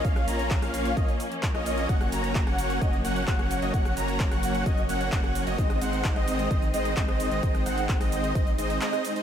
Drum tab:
HH |xxoxxooxxxoxxxox|xxoxxxoxxxoxxxox|xxoxxooxxxoxxxox|xxoxxxoxxxoxxxox|
SH |xxxxx-xxxxxxx-xx|xxxxx-xxxxxxx-xx|xxxxx-xxxxxxx-xx|xxxxx-xxxxxxx-xx|
CP |----x-------x---|----x-------x---|----x-------x---|----x-------x---|
SD |-r---r-------r--|-r---r-------r--|-r---r-------r--|-r---r-------r--|
BD |o---o---o---o---|o---o---o---o---|o---o---o---o---|o---o---o---o---|

HH |xxoxxooxxxoxxxox|
SH |xxxxxxxxxxxxxxxx|
CP |----x-------x---|
SD |-r---r-------r--|
BD |o---o---o-------|